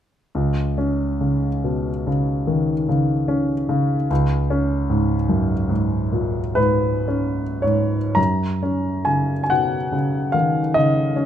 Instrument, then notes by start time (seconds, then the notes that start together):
grand piano
0.35 C#2
0.78 C#4
1.21 C#3
1.64 B2
2.07 C#3
2.47 D#3
2.89 C#3
3.28 C#4
3.69 C#3
4.10 C#2
4.50 C#4
4.90 G#2
5.29 F#2
5.69 G#2
6.12 A#2
6.55 G#2 B4
7.08 C#4
7.62 G#2 C#5
8.15 F#2 A#5
8.63 C#4
9.05 C#3 G#5
9.44 G#5
9.50 B2 F#5
9.92 C#3
10.32 D#3 F5
10.74 C#3 D#5
11.16 C#4